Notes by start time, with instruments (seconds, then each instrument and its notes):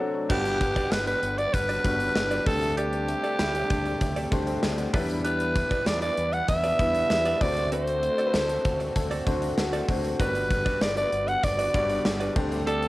Already playing: analog synth pad C3 F#3 A3 D4 F#4, clean electric guitar F#4
0.00 grand piano F#3 C4 D4 A4
0.14 muted clean electric guitar stroke
0.29 fingered electric bass G1, analog synth pad D3 G3 B3 F#5, grand piano G3 B3 D4 B4 F#5, clean electric guitar D4 F#4 B4 D5, alto saxophone G4, kick, crash
0.45 closed hi-hat
0.61 kick, closed hi-hat
0.76 clean electric guitar D4 F#4 B4 D5, kick, closed hi-hat
0.92 fingered electric bass G1, alto saxophone B4, snare, tambourine
1.07 alto saxophone B4, muted clean electric guitar stroke, closed hi-hat
1.23 fingered electric bass G1, closed hi-hat
1.38 alto saxophone D5, muted clean electric guitar stroke, closed hi-hat
1.53 fingered electric bass G1, alto saxophone B4, muted clean electric guitar stroke, kick, closed hi-hat
1.69 clean electric guitar D4 F#4 B4 D5, closed hi-hat
1.84 fingered electric bass G1, grand piano G3 B3 D4 F#4 B4, muted clean electric guitar stroke, kick, closed hi-hat
2.00 muted clean electric guitar stroke, closed hi-hat
2.15 fingered electric bass G1, muted clean electric guitar stroke, snare, tambourine
2.31 clean electric guitar D4 F#4 B4 D5, closed hi-hat
2.46 fingered electric bass D2, analog synth pad C3 A3 D4, grand piano A3 C4 D4 G4 C5, alto saxophone A4, kick, open hi-hat
2.62 muted clean electric guitar stroke, closed hi-hat
2.77 clean electric guitar C4 G4 A4 D5, alto saxophone G4, closed hi-hat
2.93 closed hi-hat
3.08 muted clean electric guitar stroke, closed hi-hat
3.24 clean electric guitar C4 G4 A4 D5, closed hi-hat
3.39 fingered electric bass D2, clean electric guitar E4, muted clean electric guitar stroke, snare, tambourine
3.54 clean electric guitar D4, muted clean electric guitar stroke, closed hi-hat
3.70 fingered electric bass D2, kick, closed hi-hat
3.86 muted clean electric guitar stroke, closed hi-hat
4.01 fingered electric bass D2, muted clean electric guitar stroke, kick, closed hi-hat
4.16 clean electric guitar C4 G4 A4 D5, closed hi-hat
4.22 clean electric guitar C4
4.31 fingered electric bass D2, grand piano A3 C4 D4 G4 C5, muted clean electric guitar stroke, kick, closed hi-hat
4.47 clean electric guitar C4, muted clean electric guitar stroke, closed hi-hat
4.63 fingered electric bass D2, muted clean electric guitar stroke, snare, tambourine
4.78 clean electric guitar B3, muted clean electric guitar stroke, closed hi-hat
4.93 fingered electric bass E2, analog synth pad E3 B3, grand piano F#3 B3 D4 E4 B4, clean electric guitar D4 G4 B4 D5, kick, open hi-hat
5.00 grand piano G3
5.09 muted clean electric guitar stroke, closed hi-hat
5.24 clean electric guitar D4 G4 B4 D5, alto saxophone B4, closed hi-hat
5.40 closed hi-hat
5.55 muted clean electric guitar stroke, kick, closed hi-hat
5.71 clean electric guitar D4 G4 B4 D5, kick, closed hi-hat
5.86 fingered electric bass E2, alto saxophone D5, snare, tambourine
6.02 alto saxophone D5, muted clean electric guitar stroke, closed hi-hat
6.17 fingered electric bass E2, closed hi-hat
6.33 alto saxophone F#5, muted clean electric guitar stroke, closed hi-hat
6.48 fingered electric bass E2, alto saxophone E5, muted clean electric guitar stroke, kick, closed hi-hat
6.64 clean electric guitar D4 G4 B4 D5, closed hi-hat
6.79 fingered electric bass E2, grand piano G3 B3 D4 E4 B4, kick, closed hi-hat
6.95 muted clean electric guitar stroke, closed hi-hat
7.10 fingered electric bass E2, muted clean electric guitar stroke, snare, tambourine
7.25 clean electric guitar D4 G4 B4 D5, closed hi-hat
7.40 fingered electric bass D2, analog synth pad D3 A3 C4 F#4, grand piano A3 C4 D4 F#4 C5, alto saxophone D5, muted clean electric guitar stroke, kick, open hi-hat
7.57 muted clean electric guitar stroke, closed hi-hat
7.72 clean electric guitar C4 F#4 A4 D5, alto saxophone C5, closed hi-hat
7.88 closed hi-hat
8.03 closed hi-hat
8.18 clean electric guitar C4 F#4 A4 D5, closed hi-hat
8.27 clean electric guitar B4
8.34 fingered electric bass D2, clean electric guitar A4, snare, tambourine
8.49 muted clean electric guitar stroke, closed hi-hat
8.65 fingered electric bass D2, kick, closed hi-hat
8.80 muted clean electric guitar stroke, closed hi-hat
8.95 fingered electric bass D2, clean electric guitar A4, muted clean electric guitar stroke, kick, closed hi-hat
9.11 clean electric guitar C4 F#4 A4 D5, closed hi-hat
9.26 fingered electric bass D2, grand piano A3 C4 D4 F#4 C5, muted clean electric guitar stroke, kick, closed hi-hat
9.42 muted clean electric guitar stroke, closed hi-hat
9.58 fingered electric bass D2, clean electric guitar F#4, muted clean electric guitar stroke, snare, tambourine
9.73 clean electric guitar C4 F#4 A4 D5, closed hi-hat
9.88 fingered electric bass D2, grand piano A3 C4 D4 F#4 C5, muted clean electric guitar stroke, kick, open hi-hat
10.04 muted clean electric guitar stroke, closed hi-hat
10.19 fingered electric bass G1, grand piano G3 B3 D4 F#4 A#4, analog synth pad G3 B3, clean electric guitar D4 F#4 B4 D5, alto saxophone B4, kick, closed hi-hat
10.27 grand piano B4
10.35 closed hi-hat
10.50 muted clean electric guitar stroke, kick, closed hi-hat
10.65 clean electric guitar D4 F#4 B4 D5, kick, closed hi-hat
10.81 fingered electric bass G1, alto saxophone D5, muted clean electric guitar stroke, snare, tambourine
10.97 alto saxophone D5, muted clean electric guitar stroke, closed hi-hat
11.12 fingered electric bass G1, closed hi-hat
11.28 alto saxophone F#5, muted clean electric guitar stroke, closed hi-hat
11.43 fingered electric bass G1, alto saxophone D5, muted clean electric guitar stroke, kick, closed hi-hat
11.59 clean electric guitar D4 F#4 B4 D5, closed hi-hat
11.74 fingered electric bass G1, grand piano G3 B3 D4 F#4 D5, kick, closed hi-hat
11.90 muted clean electric guitar stroke, closed hi-hat
12.05 fingered electric bass G1, muted clean electric guitar stroke, snare, tambourine
12.20 clean electric guitar D4 F#4 B4 D5, closed hi-hat
12.36 fingered electric bass D2, grand piano A3 C4 D4 G4 C5, analog synth pad A3 C4 A4, muted clean electric guitar stroke, kick, crash
12.51 muted clean electric guitar stroke, closed hi-hat
12.67 clean electric guitar C4 G4 A4 D5, alto saxophone A4, closed hi-hat
12.83 closed hi-hat